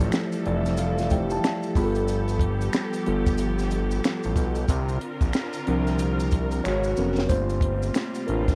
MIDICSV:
0, 0, Header, 1, 5, 480
1, 0, Start_track
1, 0, Tempo, 652174
1, 1531, Time_signature, 4, 2, 24, 8
1, 6294, End_track
2, 0, Start_track
2, 0, Title_t, "Tine electric piano"
2, 0, Program_c, 0, 4
2, 0, Control_c, 0, 64, 127
2, 0, Note_on_c, 0, 53, 63
2, 0, Note_on_c, 0, 57, 61
2, 0, Note_on_c, 0, 64, 64
2, 0, Note_on_c, 0, 67, 74
2, 342, Note_on_c, 0, 74, 64
2, 411, Note_off_c, 0, 74, 0
2, 421, Note_on_c, 0, 76, 61
2, 565, Note_off_c, 0, 76, 0
2, 579, Note_on_c, 0, 77, 73
2, 798, Note_off_c, 0, 77, 0
2, 817, Note_off_c, 0, 53, 0
2, 817, Note_on_c, 0, 53, 68
2, 822, Note_off_c, 0, 57, 0
2, 822, Note_on_c, 0, 57, 63
2, 824, Note_on_c, 0, 79, 63
2, 826, Note_off_c, 0, 64, 0
2, 826, Note_on_c, 0, 64, 62
2, 830, Note_off_c, 0, 67, 0
2, 830, Note_on_c, 0, 67, 74
2, 955, Note_off_c, 0, 79, 0
2, 969, Note_on_c, 0, 81, 67
2, 998, Note_off_c, 0, 53, 0
2, 1001, Note_off_c, 0, 57, 0
2, 1003, Note_off_c, 0, 64, 0
2, 1005, Note_off_c, 0, 67, 0
2, 1050, Note_off_c, 0, 81, 0
2, 1061, Note_on_c, 0, 81, 69
2, 1280, Note_off_c, 0, 81, 0
2, 1293, Note_on_c, 0, 55, 84
2, 1297, Note_on_c, 0, 59, 75
2, 1301, Control_c, 0, 64, 0
2, 1301, Note_on_c, 0, 83, 72
2, 1302, Note_on_c, 0, 65, 77
2, 1306, Note_on_c, 0, 68, 71
2, 1353, Note_on_c, 0, 69, 93
2, 1357, Note_off_c, 0, 68, 0
2, 1439, Control_c, 0, 64, 127
2, 1520, Note_off_c, 0, 83, 0
2, 2206, Note_off_c, 0, 55, 0
2, 2208, Note_off_c, 0, 59, 0
2, 2211, Note_off_c, 0, 65, 0
2, 2236, Note_off_c, 0, 69, 0
2, 2254, Note_on_c, 0, 55, 70
2, 2259, Note_on_c, 0, 59, 63
2, 2264, Note_on_c, 0, 65, 65
2, 2267, Note_on_c, 0, 69, 75
2, 2935, Note_off_c, 0, 55, 0
2, 2938, Note_off_c, 0, 59, 0
2, 2940, Note_off_c, 0, 65, 0
2, 2942, Note_off_c, 0, 69, 0
2, 3462, Control_c, 0, 64, 0
2, 3579, Control_c, 0, 64, 127
2, 4175, Note_on_c, 0, 53, 77
2, 4178, Note_on_c, 0, 60, 68
2, 4181, Note_on_c, 0, 62, 69
2, 4186, Note_on_c, 0, 70, 82
2, 4856, Note_off_c, 0, 53, 0
2, 4857, Note_off_c, 0, 60, 0
2, 4859, Note_off_c, 0, 62, 0
2, 4862, Note_off_c, 0, 70, 0
2, 4887, Note_on_c, 0, 73, 93
2, 4901, Control_c, 0, 64, 0
2, 4905, Note_on_c, 0, 66, 74
2, 5039, Control_c, 0, 64, 127
2, 5131, Note_on_c, 0, 54, 65
2, 5135, Note_on_c, 0, 59, 58
2, 5138, Note_on_c, 0, 61, 60
2, 5142, Note_on_c, 0, 70, 70
2, 5340, Note_off_c, 0, 73, 0
2, 5348, Note_off_c, 0, 66, 0
2, 5364, Note_on_c, 0, 72, 90
2, 5370, Note_on_c, 0, 57, 50
2, 5371, Note_off_c, 0, 54, 0
2, 5373, Note_off_c, 0, 59, 0
2, 5374, Note_off_c, 0, 61, 0
2, 5375, Note_on_c, 0, 58, 47
2, 5376, Note_off_c, 0, 70, 0
2, 5376, Note_on_c, 0, 60, 46
2, 5379, Note_on_c, 0, 65, 74
2, 5381, Control_c, 0, 64, 0
2, 5490, Control_c, 0, 64, 127
2, 5818, Note_off_c, 0, 72, 0
2, 5827, Note_off_c, 0, 65, 0
2, 6061, Note_off_c, 0, 57, 0
2, 6063, Note_off_c, 0, 58, 0
2, 6064, Note_off_c, 0, 60, 0
2, 6086, Note_on_c, 0, 70, 80
2, 6103, Note_on_c, 0, 62, 59
2, 6294, Note_off_c, 0, 62, 0
2, 6294, Note_off_c, 0, 70, 0
2, 6294, End_track
3, 0, Start_track
3, 0, Title_t, "String section"
3, 0, Program_c, 1, 48
3, 0, Note_on_c, 1, 52, 68
3, 0, Note_on_c, 1, 53, 80
3, 0, Note_on_c, 1, 55, 66
3, 0, Note_on_c, 1, 69, 64
3, 1264, Note_off_c, 1, 53, 0
3, 1274, Note_off_c, 1, 52, 0
3, 1274, Note_off_c, 1, 55, 0
3, 1288, Note_on_c, 1, 53, 73
3, 1288, Note_on_c, 1, 59, 67
3, 1290, Note_on_c, 1, 67, 80
3, 3424, Note_off_c, 1, 69, 0
3, 3428, Note_off_c, 1, 53, 0
3, 3428, Note_off_c, 1, 59, 0
3, 3429, Note_off_c, 1, 67, 0
3, 3449, Note_on_c, 1, 65, 82
3, 3450, Note_on_c, 1, 50, 73
3, 3450, Note_on_c, 1, 60, 65
3, 3452, Note_on_c, 1, 70, 63
3, 4875, Note_off_c, 1, 65, 0
3, 4876, Note_off_c, 1, 50, 0
3, 4876, Note_off_c, 1, 60, 0
3, 4893, Note_on_c, 1, 49, 60
3, 4893, Note_on_c, 1, 66, 64
3, 4895, Note_on_c, 1, 59, 62
3, 5352, Note_off_c, 1, 70, 0
3, 5367, Note_off_c, 1, 49, 0
3, 5367, Note_off_c, 1, 66, 0
3, 5368, Note_off_c, 1, 59, 0
3, 5369, Note_on_c, 1, 55, 69
3, 5370, Note_on_c, 1, 48, 69
3, 5370, Note_on_c, 1, 60, 63
3, 5370, Note_on_c, 1, 65, 79
3, 6294, Note_off_c, 1, 48, 0
3, 6294, Note_off_c, 1, 55, 0
3, 6294, Note_off_c, 1, 60, 0
3, 6294, Note_off_c, 1, 65, 0
3, 6294, End_track
4, 0, Start_track
4, 0, Title_t, "Analog synth bass"
4, 0, Program_c, 2, 38
4, 1, Note_on_c, 2, 33, 90
4, 84, Note_off_c, 2, 33, 0
4, 343, Note_on_c, 2, 29, 89
4, 1027, Note_off_c, 2, 29, 0
4, 1296, Note_on_c, 2, 31, 94
4, 1984, Note_off_c, 2, 31, 0
4, 2265, Note_on_c, 2, 31, 97
4, 2948, Note_off_c, 2, 31, 0
4, 3131, Note_on_c, 2, 33, 82
4, 3209, Note_off_c, 2, 33, 0
4, 3214, Note_on_c, 2, 35, 84
4, 3430, Note_off_c, 2, 35, 0
4, 3454, Note_on_c, 2, 36, 102
4, 3670, Note_off_c, 2, 36, 0
4, 3840, Note_on_c, 2, 34, 82
4, 3923, Note_off_c, 2, 34, 0
4, 4181, Note_on_c, 2, 36, 94
4, 4866, Note_off_c, 2, 36, 0
4, 4900, Note_on_c, 2, 32, 89
4, 5113, Note_off_c, 2, 32, 0
4, 5142, Note_on_c, 2, 29, 78
4, 5354, Note_off_c, 2, 29, 0
4, 5374, Note_on_c, 2, 31, 104
4, 5823, Note_off_c, 2, 31, 0
4, 6102, Note_on_c, 2, 33, 93
4, 6294, Note_off_c, 2, 33, 0
4, 6294, End_track
5, 0, Start_track
5, 0, Title_t, "Drums"
5, 1, Note_on_c, 9, 82, 44
5, 10, Note_on_c, 9, 42, 42
5, 74, Note_off_c, 9, 82, 0
5, 83, Note_off_c, 9, 42, 0
5, 90, Note_on_c, 9, 26, 60
5, 90, Note_on_c, 9, 82, 56
5, 101, Note_on_c, 9, 38, 106
5, 163, Note_off_c, 9, 26, 0
5, 163, Note_off_c, 9, 82, 0
5, 175, Note_off_c, 9, 38, 0
5, 237, Note_on_c, 9, 82, 45
5, 247, Note_on_c, 9, 42, 50
5, 311, Note_off_c, 9, 82, 0
5, 321, Note_off_c, 9, 42, 0
5, 335, Note_on_c, 9, 42, 55
5, 409, Note_off_c, 9, 42, 0
5, 484, Note_on_c, 9, 82, 43
5, 485, Note_on_c, 9, 42, 45
5, 491, Note_on_c, 9, 38, 34
5, 557, Note_off_c, 9, 82, 0
5, 559, Note_off_c, 9, 42, 0
5, 565, Note_off_c, 9, 38, 0
5, 568, Note_on_c, 9, 82, 70
5, 574, Note_on_c, 9, 42, 82
5, 642, Note_off_c, 9, 82, 0
5, 648, Note_off_c, 9, 42, 0
5, 723, Note_on_c, 9, 82, 49
5, 728, Note_on_c, 9, 42, 48
5, 737, Note_on_c, 9, 38, 34
5, 797, Note_off_c, 9, 82, 0
5, 802, Note_off_c, 9, 42, 0
5, 809, Note_on_c, 9, 82, 44
5, 810, Note_off_c, 9, 38, 0
5, 818, Note_on_c, 9, 36, 83
5, 819, Note_on_c, 9, 42, 72
5, 882, Note_off_c, 9, 82, 0
5, 891, Note_off_c, 9, 36, 0
5, 893, Note_off_c, 9, 42, 0
5, 958, Note_on_c, 9, 82, 45
5, 967, Note_on_c, 9, 42, 44
5, 1032, Note_off_c, 9, 82, 0
5, 1040, Note_off_c, 9, 42, 0
5, 1061, Note_on_c, 9, 26, 61
5, 1061, Note_on_c, 9, 82, 58
5, 1064, Note_on_c, 9, 38, 109
5, 1134, Note_off_c, 9, 26, 0
5, 1134, Note_off_c, 9, 82, 0
5, 1138, Note_off_c, 9, 38, 0
5, 1198, Note_on_c, 9, 82, 42
5, 1208, Note_on_c, 9, 42, 40
5, 1272, Note_off_c, 9, 82, 0
5, 1282, Note_off_c, 9, 42, 0
5, 1291, Note_on_c, 9, 36, 95
5, 1296, Note_on_c, 9, 82, 45
5, 1297, Note_on_c, 9, 46, 43
5, 1364, Note_off_c, 9, 36, 0
5, 1369, Note_off_c, 9, 82, 0
5, 1371, Note_off_c, 9, 46, 0
5, 1436, Note_on_c, 9, 82, 37
5, 1444, Note_on_c, 9, 42, 45
5, 1510, Note_off_c, 9, 82, 0
5, 1518, Note_off_c, 9, 42, 0
5, 1531, Note_on_c, 9, 82, 63
5, 1539, Note_on_c, 9, 42, 67
5, 1605, Note_off_c, 9, 82, 0
5, 1613, Note_off_c, 9, 42, 0
5, 1677, Note_on_c, 9, 42, 38
5, 1682, Note_on_c, 9, 82, 40
5, 1751, Note_off_c, 9, 42, 0
5, 1756, Note_off_c, 9, 82, 0
5, 1762, Note_on_c, 9, 36, 85
5, 1771, Note_on_c, 9, 42, 72
5, 1835, Note_off_c, 9, 36, 0
5, 1844, Note_off_c, 9, 42, 0
5, 1922, Note_on_c, 9, 82, 44
5, 1928, Note_on_c, 9, 42, 43
5, 1996, Note_off_c, 9, 82, 0
5, 2001, Note_off_c, 9, 42, 0
5, 2011, Note_on_c, 9, 26, 59
5, 2011, Note_on_c, 9, 82, 56
5, 2021, Note_on_c, 9, 38, 102
5, 2084, Note_off_c, 9, 26, 0
5, 2084, Note_off_c, 9, 82, 0
5, 2094, Note_off_c, 9, 38, 0
5, 2158, Note_on_c, 9, 82, 47
5, 2165, Note_on_c, 9, 42, 50
5, 2232, Note_off_c, 9, 82, 0
5, 2239, Note_off_c, 9, 42, 0
5, 2255, Note_on_c, 9, 42, 55
5, 2328, Note_off_c, 9, 42, 0
5, 2402, Note_on_c, 9, 36, 89
5, 2403, Note_on_c, 9, 82, 44
5, 2404, Note_on_c, 9, 42, 45
5, 2476, Note_off_c, 9, 36, 0
5, 2477, Note_off_c, 9, 42, 0
5, 2477, Note_off_c, 9, 82, 0
5, 2487, Note_on_c, 9, 82, 68
5, 2494, Note_on_c, 9, 42, 75
5, 2560, Note_off_c, 9, 82, 0
5, 2568, Note_off_c, 9, 42, 0
5, 2641, Note_on_c, 9, 82, 50
5, 2647, Note_on_c, 9, 42, 43
5, 2656, Note_on_c, 9, 38, 32
5, 2715, Note_off_c, 9, 82, 0
5, 2720, Note_off_c, 9, 42, 0
5, 2728, Note_on_c, 9, 82, 45
5, 2729, Note_off_c, 9, 38, 0
5, 2738, Note_on_c, 9, 42, 68
5, 2801, Note_off_c, 9, 82, 0
5, 2812, Note_off_c, 9, 42, 0
5, 2878, Note_on_c, 9, 82, 46
5, 2885, Note_on_c, 9, 42, 44
5, 2952, Note_off_c, 9, 82, 0
5, 2958, Note_off_c, 9, 42, 0
5, 2976, Note_on_c, 9, 26, 62
5, 2976, Note_on_c, 9, 82, 60
5, 2984, Note_on_c, 9, 38, 110
5, 3050, Note_off_c, 9, 26, 0
5, 3050, Note_off_c, 9, 82, 0
5, 3057, Note_off_c, 9, 38, 0
5, 3115, Note_on_c, 9, 82, 43
5, 3127, Note_on_c, 9, 42, 40
5, 3189, Note_off_c, 9, 82, 0
5, 3201, Note_off_c, 9, 42, 0
5, 3207, Note_on_c, 9, 36, 84
5, 3209, Note_on_c, 9, 82, 43
5, 3217, Note_on_c, 9, 42, 57
5, 3281, Note_off_c, 9, 36, 0
5, 3283, Note_off_c, 9, 82, 0
5, 3290, Note_off_c, 9, 42, 0
5, 3350, Note_on_c, 9, 82, 39
5, 3362, Note_on_c, 9, 42, 43
5, 3424, Note_off_c, 9, 82, 0
5, 3435, Note_off_c, 9, 42, 0
5, 3448, Note_on_c, 9, 36, 105
5, 3448, Note_on_c, 9, 82, 59
5, 3457, Note_on_c, 9, 42, 77
5, 3522, Note_off_c, 9, 36, 0
5, 3522, Note_off_c, 9, 82, 0
5, 3530, Note_off_c, 9, 42, 0
5, 3596, Note_on_c, 9, 42, 42
5, 3598, Note_on_c, 9, 82, 37
5, 3669, Note_off_c, 9, 42, 0
5, 3671, Note_off_c, 9, 82, 0
5, 3689, Note_on_c, 9, 42, 78
5, 3763, Note_off_c, 9, 42, 0
5, 3833, Note_on_c, 9, 36, 80
5, 3836, Note_on_c, 9, 82, 43
5, 3846, Note_on_c, 9, 42, 40
5, 3907, Note_off_c, 9, 36, 0
5, 3909, Note_off_c, 9, 82, 0
5, 3920, Note_off_c, 9, 42, 0
5, 3925, Note_on_c, 9, 26, 59
5, 3925, Note_on_c, 9, 82, 58
5, 3938, Note_on_c, 9, 38, 97
5, 3999, Note_off_c, 9, 26, 0
5, 3999, Note_off_c, 9, 82, 0
5, 4011, Note_off_c, 9, 38, 0
5, 4071, Note_on_c, 9, 82, 43
5, 4084, Note_on_c, 9, 42, 51
5, 4145, Note_off_c, 9, 82, 0
5, 4157, Note_off_c, 9, 42, 0
5, 4172, Note_on_c, 9, 42, 57
5, 4246, Note_off_c, 9, 42, 0
5, 4320, Note_on_c, 9, 42, 45
5, 4320, Note_on_c, 9, 82, 42
5, 4327, Note_on_c, 9, 38, 33
5, 4394, Note_off_c, 9, 42, 0
5, 4394, Note_off_c, 9, 82, 0
5, 4400, Note_off_c, 9, 38, 0
5, 4406, Note_on_c, 9, 82, 64
5, 4410, Note_on_c, 9, 42, 84
5, 4480, Note_off_c, 9, 82, 0
5, 4484, Note_off_c, 9, 42, 0
5, 4561, Note_on_c, 9, 82, 44
5, 4563, Note_on_c, 9, 42, 44
5, 4635, Note_off_c, 9, 82, 0
5, 4636, Note_off_c, 9, 42, 0
5, 4644, Note_on_c, 9, 82, 41
5, 4654, Note_on_c, 9, 36, 82
5, 4654, Note_on_c, 9, 42, 73
5, 4718, Note_off_c, 9, 82, 0
5, 4728, Note_off_c, 9, 36, 0
5, 4728, Note_off_c, 9, 42, 0
5, 4794, Note_on_c, 9, 82, 44
5, 4802, Note_on_c, 9, 42, 44
5, 4867, Note_off_c, 9, 82, 0
5, 4875, Note_off_c, 9, 42, 0
5, 4895, Note_on_c, 9, 26, 60
5, 4895, Note_on_c, 9, 82, 57
5, 4969, Note_off_c, 9, 26, 0
5, 4969, Note_off_c, 9, 82, 0
5, 5032, Note_on_c, 9, 82, 44
5, 5105, Note_off_c, 9, 82, 0
5, 5127, Note_on_c, 9, 82, 44
5, 5201, Note_off_c, 9, 82, 0
5, 5270, Note_on_c, 9, 82, 39
5, 5289, Note_on_c, 9, 38, 76
5, 5344, Note_off_c, 9, 82, 0
5, 5363, Note_off_c, 9, 38, 0
5, 5368, Note_on_c, 9, 36, 100
5, 5368, Note_on_c, 9, 82, 59
5, 5378, Note_on_c, 9, 42, 71
5, 5441, Note_off_c, 9, 82, 0
5, 5442, Note_off_c, 9, 36, 0
5, 5451, Note_off_c, 9, 42, 0
5, 5517, Note_on_c, 9, 42, 41
5, 5518, Note_on_c, 9, 82, 39
5, 5590, Note_off_c, 9, 42, 0
5, 5591, Note_off_c, 9, 82, 0
5, 5600, Note_on_c, 9, 36, 94
5, 5610, Note_on_c, 9, 42, 73
5, 5674, Note_off_c, 9, 36, 0
5, 5683, Note_off_c, 9, 42, 0
5, 5759, Note_on_c, 9, 82, 43
5, 5767, Note_on_c, 9, 42, 39
5, 5832, Note_off_c, 9, 82, 0
5, 5840, Note_off_c, 9, 42, 0
5, 5847, Note_on_c, 9, 26, 57
5, 5847, Note_on_c, 9, 82, 60
5, 5859, Note_on_c, 9, 38, 99
5, 5920, Note_off_c, 9, 26, 0
5, 5920, Note_off_c, 9, 82, 0
5, 5933, Note_off_c, 9, 38, 0
5, 5996, Note_on_c, 9, 82, 44
5, 6002, Note_on_c, 9, 42, 49
5, 6069, Note_off_c, 9, 82, 0
5, 6076, Note_off_c, 9, 42, 0
5, 6093, Note_on_c, 9, 42, 56
5, 6167, Note_off_c, 9, 42, 0
5, 6241, Note_on_c, 9, 36, 90
5, 6243, Note_on_c, 9, 42, 47
5, 6244, Note_on_c, 9, 82, 41
5, 6249, Note_on_c, 9, 38, 34
5, 6294, Note_off_c, 9, 36, 0
5, 6294, Note_off_c, 9, 38, 0
5, 6294, Note_off_c, 9, 42, 0
5, 6294, Note_off_c, 9, 82, 0
5, 6294, End_track
0, 0, End_of_file